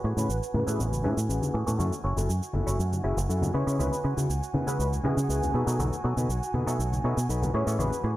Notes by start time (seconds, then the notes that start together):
Already playing: F#4 G#5
0.04 A2 E3 A3 B3 C#4 G#4, muted clean electric guitar stroke, tambourine
0.17 A2 C#4 G#4 B4 C#5, tambourine, high conga, cabasa
0.29 A1, tambourine, cabasa
0.42 muted clean electric guitar stroke, cabasa
0.54 A2 C#4 G#4 B4, tambourine, high conga
0.67 A2 E3 A3 B3 C#4 G#4, tambourine, cabasa
0.79 A1, tambourine, low conga, cabasa
0.91 tambourine, high conga, cabasa
1.04 A2 E3 A3 B3 C#4 G#4 B4, tambourine, low conga
1.17 A2, cabasa
1.29 A1 C#4 G#4 B4, cabasa
1.41 tambourine, high conga, cabasa
1.54 A2 E3 A3 B3 C#4 G#4, tambourine
1.66 A2 E3 A3 B3 C#4 A4, tambourine, low conga, cabasa
1.78 F#2 A3 C#4 E4 F#4 A4 C#5 G#5, tambourine, high conga, cabasa
1.92 tambourine, cabasa
2.03 F#1 A3 C#4 E4 F#4 C#5, muted clean electric guitar stroke, tambourine
2.16 F#1 E4 F#4 A4, tambourine, high conga, cabasa
2.29 F#2, tambourine, cabasa
2.42 muted clean electric guitar stroke, tambourine, cabasa
2.53 F#1 E4 F#4 A4, tambourine, high conga
2.66 F#1 A3 C#4 E4 F#4 C#5, tambourine, cabasa
2.79 F#2, cabasa
2.92 tambourine, high conga, cabasa
3.04 F#1 A3 C#4 E4 F#4 G#4 E5, tambourine
3.17 F#1, cabasa
3.29 F#2 E4 F#4 A4, cabasa
3.42 tambourine, high conga, low conga, cabasa
3.54 C#3 G#3 B3 C#4 E4 B4 C#5, tambourine
3.67 C#3 G#3 B3 C#4 E4 C#5, tambourine, cabasa
3.79 C#2 G#3 B3 C#4 E4 B4, tambourine, high conga, cabasa
3.92 tambourine, cabasa
4.04 C#3 G#3 B3 C#4 E4 B4, tambourine
4.17 C#3 C#4 E4 F#4, tambourine, high conga, cabasa
4.29 C#2, tambourine, cabasa
4.42 muted clean electric guitar stroke, tambourine, cabasa
4.54 C#3 C#4 E4 B4, tambourine, high conga
4.67 C#3 G#3 B3 C#4 E4 B4, tambourine, cabasa
4.79 C#2 B4, tambourine, cabasa
4.92 tambourine, high conga, cabasa
5.04 C#3 G#3 B3 C#4 E4 G#4 B4 D#5, tambourine, low conga
5.17 C#3, tambourine, cabasa
5.29 C#2 C#4 E4 B4, tambourine, cabasa
5.42 tambourine, high conga, cabasa
5.54 B2 F#3 A3 B3 D#4 A4 B4, tambourine
5.67 B2 F#3 A3 B3 D#4 B4, cabasa
5.79 B1 F#3 A3 B3 D#4 A4, tambourine, high conga, cabasa
5.92 tambourine, cabasa
6.04 B2 F#3 A3 B3 D#4 A4, muted clean electric guitar stroke, tambourine
6.17 B2 D#4 A4 B4, tambourine, high conga, cabasa
6.29 B1, tambourine, cabasa
6.42 muted clean electric guitar stroke, tambourine, cabasa
6.54 B2 D#4 A4 B4, tambourine, high conga
6.67 B2 F#3 A3 B3 D#4 A4, cabasa
6.78 B1, tambourine, cabasa
6.92 tambourine, high conga, cabasa
7.04 B2 F#3 A3 B3 D#4 A4 B4 C#5, tambourine
7.17 B2, cabasa
7.29 B1 D#4 A4 B4, cabasa
7.42 tambourine, high conga, low conga, cabasa
7.54 A2 E3 A3 B3 C#4 G#4 B4 C#5, tambourine
7.67 A2 E3 A3 B3 C#4 A4 C#5, tambourine, cabasa
7.79 A1 E3 A3 B3 C#4 G#4 B4, tambourine, high conga, cabasa
7.91 tambourine, cabasa
8.04 A2 E3 A3 B3 C#4 G#4, tambourine